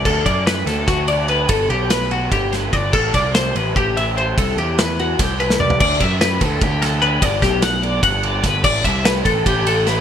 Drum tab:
CC |x-------------|--------------|x-------------|--------------|
RD |--x-x-x-x-x-x-|x-x-x-x-x-x-x-|--x-x-x-x-x-x-|x-x-x-x-x-x---|
SD |----o-o-o-----|----o-----o---|----o---------|----o---o--o--|
T2 |--------------|--------------|--------------|------------o-|
FT |--------------|--------------|--------------|-------------o|
BD |o-o-----o-----|o-------o---o-|o-o-----o-----|o-------o-----|

CC |x-------------|--------------|x-------------|
RD |--x-x-x-x-x-x-|x-x-x-x-x-x-x-|--x-x-x-x-x-x-|
SD |----o-----o---|--o-o-------o-|----o-------o-|
T2 |--------------|--------------|--------------|
FT |--------------|--------------|--------------|
BD |o-o---o-o-----|o-o-----o---o-|o-o---o-o-----|